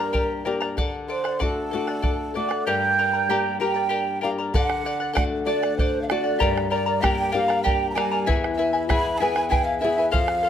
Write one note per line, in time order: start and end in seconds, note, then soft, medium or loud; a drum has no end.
0.00 0.73 G2 medium
0.00 0.44 A#3 soft
0.00 0.44 D4 soft
0.00 0.44 G4 medium
0.00 0.12 A#4 soft
0.00 0.55 A#4 medium
0.00 0.12 D5 medium
0.00 0.13 A#5 medium
0.00 0.55 A#5 medium
0.13 0.45 G4 medium
0.13 0.44 A#4 medium
0.13 0.44 D5 medium
0.13 0.44 G5 medium
0.13 0.45 A#5 medium
0.13 bombo low medium
0.45 0.77 A#3 medium
0.45 0.77 D4 soft
0.45 0.77 G4 medium
0.45 0.61 A#4 medium
0.45 0.60 D5 medium
0.45 0.61 G5 medium
0.45 0.59 A#5 medium
0.60 0.78 A#4 soft
0.60 0.77 D5 medium
0.60 0.77 A#5 medium
0.60 bombo rim medium
0.77 2.62 D3 medium
0.77 1.07 A4 medium
0.77 1.08 D5 medium
0.77 1.08 F#5 medium
0.77 bombo low medium
1.08 1.25 A4 medium
1.08 1.43 C5 medium
1.08 1.24 D5 medium
1.08 1.23 F#5 medium
1.08 1.43 C6 medium
1.08 bombo rim soft
1.24 1.39 D5 soft
1.24 1.39 F#5 medium
1.24 bombo rim medium
1.39 1.72 A3 medium
1.39 1.73 D4 soft
1.39 1.74 F#4 soft
1.39 1.70 A4 medium
1.39 2.35 A4 medium
1.39 1.72 D5 medium
1.39 1.72 F#5 medium
1.39 2.35 A5 medium
1.39 bombo rim soft
1.39 bombo low medium
1.71 2.33 A3 soft
1.71 2.34 D4 soft
1.71 2.34 F#4 medium
1.71 1.87 A4 medium
1.71 1.87 D5 medium
1.71 1.86 F#5 medium
1.87 2.01 D5 soft
1.87 2.02 F#5 medium
1.87 bombo rim soft
2.02 2.33 A4 medium
2.02 2.34 D5 medium
2.02 2.34 F#5 medium
2.02 bombo low medium
2.34 2.66 A3 soft
2.34 2.66 D4 soft
2.34 2.66 F#4 soft
2.34 2.50 A4 medium
2.34 2.49 D5 medium
2.34 2.65 D5 loud
2.34 2.48 F#5 medium
2.34 2.64 D6 medium
2.49 2.66 D5 soft
2.49 2.65 F#5 medium
2.49 bombo rim medium
2.67 4.50 G2 medium
2.67 2.98 G4 medium
2.67 2.98 A#4 medium
2.67 2.98 D5 medium
2.67 2.97 G5 medium
2.67 3.57 G5 loud
2.67 2.98 A#5 medium
2.67 3.56 G6 medium
2.99 3.13 A#4 medium
2.99 3.13 D5 medium
2.99 3.14 G5 medium
2.99 3.12 A#5 medium
3.13 3.29 A#4 soft
3.13 3.29 D5 soft
3.13 3.29 A#5 soft
3.29 3.59 A#3 soft
3.29 3.59 D4 soft
3.29 3.60 G4 medium
3.29 3.59 A#4 medium
3.29 3.60 D5 medium
3.29 3.59 G5 medium
3.29 3.60 A#5 medium
3.60 4.21 A#3 soft
3.60 4.21 D4 soft
3.60 4.21 G4 medium
3.60 3.75 A#4 medium
3.60 3.75 D5 medium
3.60 3.75 G5 medium
3.60 4.19 G5 loud
3.60 4.19 G5 medium
3.60 3.73 A#5 medium
3.74 3.88 A#4 soft
3.74 3.89 D5 medium
3.74 3.89 A#5 medium
3.89 4.21 G4 medium
3.89 4.20 A#4 medium
3.89 4.21 D5 medium
3.89 4.20 G5 medium
3.89 4.22 A#5 medium
4.21 4.53 A#3 soft
4.21 4.54 D4 soft
4.21 4.54 G4 medium
4.21 4.37 A#4 medium
4.21 4.38 D5 medium
4.21 4.30 F5 medium
4.21 4.31 F5 medium
4.21 4.37 G5 medium
4.21 4.37 A#5 medium
4.38 4.55 A#4 soft
4.38 4.54 D5 soft
4.38 4.54 A#5 medium
4.54 6.37 D3 medium
4.54 4.84 A4 medium
4.54 4.85 D5 loud
4.54 5.12 F#5 loud
4.54 4.85 F#5 loud
4.54 5.13 F#5 medium
4.54 bombo rim soft
4.54 bombo low medium
4.70 bombo rim medium
4.85 5.01 A4 medium
4.85 5.00 D5 medium
4.85 4.99 F#5 medium
5.00 5.13 D5 soft
5.00 5.14 F#5 medium
5.13 5.45 A3 medium
5.13 5.45 D4 medium
5.13 5.45 F#4 medium
5.13 5.45 A4 medium
5.13 5.45 D5 medium
5.13 5.47 F#5 loud
5.13 5.23 F#5 medium
5.13 5.24 F#5 medium
5.13 bombo rim medium
5.13 bombo low medium
5.46 6.07 A3 soft
5.46 6.07 D4 soft
5.46 6.07 F#4 medium
5.46 5.62 A4 medium
5.46 5.76 D5 medium
5.46 5.76 D5 loud
5.46 5.62 D5 medium
5.46 5.61 F#5 medium
5.63 5.79 D5 soft
5.63 5.78 F#5 medium
5.63 bombo rim medium
5.76 6.08 A4 medium
5.76 6.03 C5 loud
5.76 6.05 C5 medium
5.76 6.10 D5 medium
5.76 6.10 F#5 medium
5.76 bombo rim soft
5.76 bombo low medium
6.01 6.10 F5 medium
6.01 6.11 F5 medium
6.08 6.40 A3 medium
6.08 6.40 D4 soft
6.08 6.40 F#4 medium
6.08 6.25 A4 medium
6.08 6.69 D5 loud
6.08 6.71 D5 medium
6.08 6.24 D5 medium
6.08 6.23 F#5 medium
6.08 bombo rim medium
6.24 6.39 D5 soft
6.24 6.40 F#5 medium
6.39 8.24 G2 medium
6.39 6.71 G4 medium
6.39 6.69 A#4 medium
6.39 6.70 D5 medium
6.39 6.69 G5 medium
6.39 6.70 A#5 loud
6.39 bombo rim soft
6.39 bombo low medium
6.58 bombo rim medium
6.69 6.87 A#4 medium
6.69 7.02 D5 medium
6.69 6.86 D5 medium
6.69 7.03 D5 medium
6.69 6.87 G5 medium
6.69 6.85 A#5 medium
6.86 7.01 A#4 soft
6.86 7.02 D5 soft
6.86 7.02 A#5 medium
7.01 7.33 A#3 medium
7.01 7.33 D4 medium
7.01 7.34 G4 medium
7.01 7.31 A#4 medium
7.01 7.31 D5 medium
7.01 7.34 G5 loud
7.01 7.34 G5 medium
7.01 7.30 G5 medium
7.01 7.33 A#5 medium
7.01 bombo rim medium
7.01 bombo low medium
7.32 7.94 A#3 soft
7.32 7.94 D4 soft
7.32 7.95 G4 medium
7.32 7.48 A#4 medium
7.32 7.47 D5 medium
7.32 7.64 F5 loud
7.32 7.65 F5 medium
7.32 7.48 G5 medium
7.32 7.47 A#5 medium
7.48 7.64 A#4 soft
7.48 7.63 D5 medium
7.48 7.64 A#5 medium
7.48 bombo rim medium
7.63 7.96 G4 medium
7.63 7.95 A#4 medium
7.63 7.95 D5 medium
7.63 7.88 G5 loud
7.63 7.88 G5 medium
7.63 7.94 G5 medium
7.63 7.96 A#5 medium
7.63 bombo rim soft
7.63 bombo low medium
7.89 7.95 A#5 medium
7.89 7.97 A#5 medium
7.93 8.26 G3 medium
7.93 8.26 A#3 medium
7.93 8.26 D4 soft
7.93 8.12 A#4 medium
7.93 8.11 D5 medium
7.93 8.11 G5 medium
7.93 8.30 G#5 loud
7.93 8.31 G#5 medium
7.93 8.10 A#5 medium
7.98 bombo rim medium
8.11 8.27 A#4 soft
8.11 8.27 D5 medium
8.11 8.27 A#5 medium
8.26 10.10 E2 medium
8.26 8.57 E4 loud
8.26 8.58 G#4 medium
8.26 8.58 B4 medium
8.26 8.56 E5 medium
8.26 8.58 G#5 loud
8.26 bombo rim soft
8.26 bombo low medium
8.44 bombo rim medium
8.55 8.73 E4 medium
8.55 8.85 E5 medium
8.55 8.86 E5 loud
8.55 8.73 E5 medium
8.59 8.73 B4 medium
8.59 8.72 G#5 medium
8.73 8.89 E4 soft
8.73 8.89 B4 medium
8.73 8.89 G#5 medium
8.87 9.20 B3 medium
8.87 9.19 E4 medium
8.87 9.21 E4 medium
8.87 9.20 G#4 medium
8.87 9.21 G#4 medium
8.87 9.21 B4 loud
8.87 9.19 E5 medium
8.87 9.20 G#5 medium
8.87 9.21 B5 loud
8.87 9.19 B5 loud
8.87 bombo rim medium
8.87 bombo low medium
9.18 9.81 B3 medium
9.18 9.36 E4 medium
9.18 9.36 E5 medium
9.18 9.49 G#5 medium
9.18 9.48 G#5 loud
9.18 9.35 G#5 medium
9.22 9.81 E4 soft
9.22 9.82 G#4 medium
9.22 9.36 B4 medium
9.36 9.49 E4 soft
9.36 9.50 B4 medium
9.36 9.51 G#5 medium
9.36 bombo rim medium
9.49 9.80 E4 medium
9.49 9.82 G#4 medium
9.49 9.80 B4 medium
9.49 9.80 E5 medium
9.49 9.66 G5 loud
9.49 9.66 G5 medium
9.49 9.81 G#5 medium
9.49 bombo rim soft
9.49 bombo low medium
9.64 9.80 F5 loud
9.64 9.78 F5 medium
9.79 9.98 E4 medium
9.79 9.97 B4 medium
9.79 10.09 E5 medium
9.79 10.10 E5 loud
9.79 9.97 E5 medium
9.79 9.97 G#5 medium
9.84 10.13 B3 medium
9.84 10.14 E4 medium
9.84 10.13 G#4 medium
9.98 10.14 E4 soft
9.98 10.11 B4 soft
9.98 10.12 G#5 medium
10.10 10.49 F2 medium
10.10 10.42 A4 medium
10.10 10.43 C5 loud
10.10 10.49 F5 loud
10.10 10.43 F5 loud
10.10 bombo rim soft
10.10 bombo low medium
10.28 bombo rim medium
10.43 10.49 A4 medium
10.43 10.49 C5 medium
10.43 10.49 F5 medium